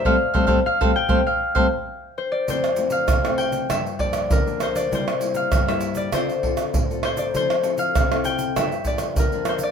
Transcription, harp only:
X:1
M:4/4
L:1/16
Q:1/4=99
K:F
V:1 name="Harp"
f4 f2 g2 f6 c d | c3 f3 g2 e2 d2 B2 c d | c3 f2 e2 d c6 c d | c3 f3 g2 e2 d2 B2 c d |]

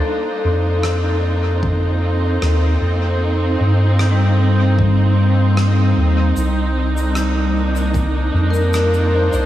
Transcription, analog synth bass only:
X:1
M:4/4
L:1/16
Q:1/4=76
K:Fmix
V:1 name="Analog synth bass" clef=bass
z2 F,,8- F,,2 E,,2 F,,2- | F,,2 G,,12 E,,2 | C,,8- C,,2 F,,4- F,, C,, |]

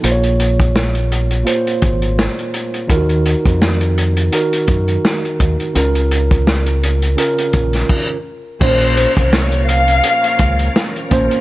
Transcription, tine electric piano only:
X:1
M:4/4
L:1/8
Q:"Swing 16ths" 1/4=84
K:Bbm
V:1 name="Tine electric piano"
[B,,B,Fcd]3 z [B,,B,Fc]3 z | [E,EFGB]3 z [E,EGB]3 z | [D,DFB]3 z [D,DFB]3 z | [B,,B,Dc]3 z4 [B,,B,Dc] |]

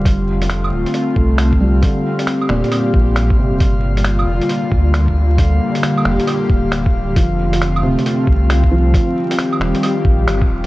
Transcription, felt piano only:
X:1
M:4/4
L:1/8
Q:"Swing 16ths" 1/4=135
K:Gm
V:1 name="Felt piano" clef=bass
[G,C] z4 A,2 G, | D,3 B,,4 C,- | C, z6 z | D,6 z2 |
F,3 C,4 F,- | F, z6 z |]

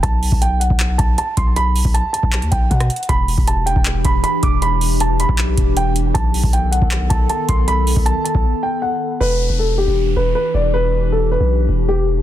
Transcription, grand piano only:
X:1
M:4/4
L:1/8
Q:1/4=157
K:Em
V:1 name="Grand piano"
a2 g f2 a a c' | b2 a a2 g f2 | b2 a g2 b b d' | b2 a b3 g z |
a2 g f2 a a c' | b2 a a2 g f2 | B2 A G2 B B d | B2 A B3 G z |]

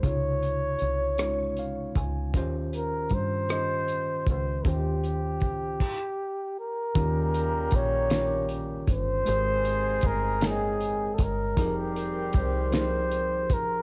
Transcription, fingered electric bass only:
X:1
M:6/8
L:1/8
Q:3/8=52
K:Ebmix
V:1 name="Fingered electric bass" clef=bass
D,,2 C,,3 D,, | E,,2 G,,3 D,, | E,,2 D,, z3 | E,,2 B,,,3 G,,, |
A,,,2 G,,,3 G,,, | F,,,2 C,,3 A,,, |]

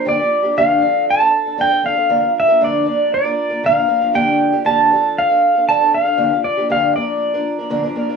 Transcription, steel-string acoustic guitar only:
X:1
M:4/4
L:1/16
Q:1/4=118
K:Gm
V:1 name="Steel-string acoustic guitar"
[G,,D,F,B,DG] [F,B,DG]2 [F,B,DG] [G,,D,F,B,DG]2 [F,CDA]3 [CDA]2 [CDA] [F,CDA] [CDA] [F,CDA] [CDA] | [G,,D,F,B,DB] [F,B,DB]2 [F,B,DB] [G,,D,F,B,DB]2 [F,B,DB]3 [F,B,DB]2 [F,B,DB] [B,,D,F,B,DB] [F,B,DB] [F,B,DB] [F,B,DB] | [G,,D,F,B,DG]3 [F,B,DG] [G,,D,F,B,DG]2 [F,CDA]3 [CDA]2 [CDA] [F,CDA] [CDA] [F,CDA] [CDA] | [G,,D,F,B,DG] [F,B,DG]2 [F,B,DG] [G,,D,F,B,DG]2 [F,B,DB]3 [F,B,DB]2 [F,B,DB] [B,,D,F,B,DB] [F,B,DB] [F,B,DB] [F,B,DB] |]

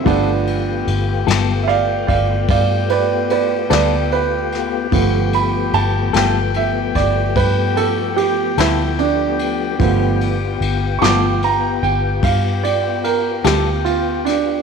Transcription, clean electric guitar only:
X:1
M:12/8
L:1/8
Q:3/8=49
K:Gmix
V:1 name="Clean electric guitar"
[G,B,FA] z2 [G,B,FA] z4 z [G,B,FA] z2 | z3 [G,B,FA] z4 z [G,B,FA] z2 | z3 [G,B,FA] z4 z [G,B,FA] z2 |]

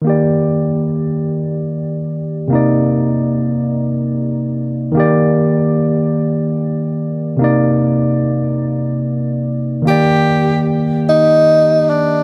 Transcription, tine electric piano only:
X:1
M:6/8
L:1/8
Q:3/8=49
K:Eb
V:1 name="Tine electric piano"
[E,B,Gd]6 | [C,B,Ed]6 | [E,B,Gd]6 | [C,B,Ed]6 |
[E,B,Gd]6 |]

